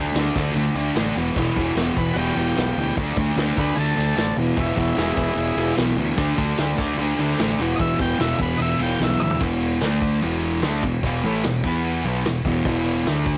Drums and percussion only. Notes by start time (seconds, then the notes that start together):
0.15 snare, crash
0.36 kick, snare, crash
0.56 crash
0.76 crash
0.96 snare, crash
1.16 crash
1.36 kick, crash
1.56 kick, crash
1.76 snare, crash
1.97 kick, crash
2.17 crash
2.37 crash
2.57 snare, crash
2.77 crash
2.97 kick, crash
3.17 kick, crash
3.38 snare, crash
3.57 kick, snare, crash
3.78 crash
3.98 crash
4.17 snare, crash
4.38 crash
4.57 kick, crash
4.77 kick, crash
4.98 snare, crash
5.17 kick, crash
5.38 crash
5.57 crash
5.77 snare, crash
5.98 crash
6.17 kick, crash
6.38 kick, crash
6.58 snare, crash
6.78 kick, snare, crash
6.99 crash
7.19 crash
7.39 snare, crash
7.59 crash
7.79 kick, crash
7.99 kick, crash
8.20 snare, crash
8.39 kick, crash
8.59 crash
8.79 crash
9.01 snare
9.10 high tom
9.20 mid tom
9.31 floor tom
9.41 kick, crash
9.61 crash
9.81 snare, crash
10.01 kick, crash
10.22 crash
10.43 crash
10.62 snare, crash
10.83 kick, crash
11.03 kick, crash
11.24 crash
11.43 snare, crash
11.64 kick, crash
11.84 crash
12.05 crash
12.25 snare, crash
12.45 kick, crash
12.65 kick, crash
12.86 crash
13.06 snare, crash
13.26 kick, crash